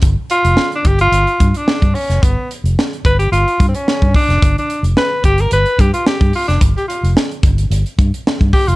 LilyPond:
<<
  \new Staff \with { instrumentName = "Tenor saxophone" } { \time 4/4 \key g \mixolydian \tempo 4 = 110 r8 f'8. d'16 g'16 f'8.~ f'32 f'32 d'8. cis'8 | b8 r4 b'16 g'16 f'8~ f'32 c'32 cis'8. d'8~ | d'16 d'8 r16 b'8 g'16 bes'16 b'8 g'16 f'16 g'8 f'16 d'16~ | d'16 g'16 f'8 r2 r8 g'16 f'16 | }
  \new Staff \with { instrumentName = "Fingered electric bass" } { \clef bass \time 4/4 \key g \mixolydian g,,16 r8 f,,16 r8 g,,8 g,,16 r16 g,16 r8 g,16 r16 f,,16 | g,,16 r8 f,,16 r8 g,,8 g,,16 r16 g,16 r8 g,16 r16 f,,16 | g,,16 r8 f,,16 r8 g,,8 g,,16 r16 g,16 r8 g,16 r16 f,,16 | g,,16 r8 f,,16 r8 g,,8 g,,16 r16 g,16 r8 g,16 r16 f,,16 | }
  \new DrumStaff \with { instrumentName = "Drums" } \drummode { \time 4/4 <hh bd>8 hh16 hh16 sn16 hh16 <hh bd>16 hh16 hh16 hh16 <hh bd>16 hh16 sn16 <hh bd>16 hho16 <hh sn>16 | <hh bd>8 hh16 hh16 sn16 hh16 <hh bd>16 hh16 hh16 hh16 <hh bd>16 hh16 sn16 <hh bd>16 <hho bd>16 <hh sn>16 | <hh bd>16 hh16 hh16 hh16 sn8 <hh bd>16 hh16 hh16 hh16 <hh bd>16 hh16 sn16 <hh bd>16 hho16 <hh sn>16 | <hh bd>16 hh16 hh16 hh16 sn16 hh16 <hh bd>16 hh16 hh16 hh16 <hh bd>16 hh16 sn16 <hh bd>16 <hho bd>16 hh16 | }
>>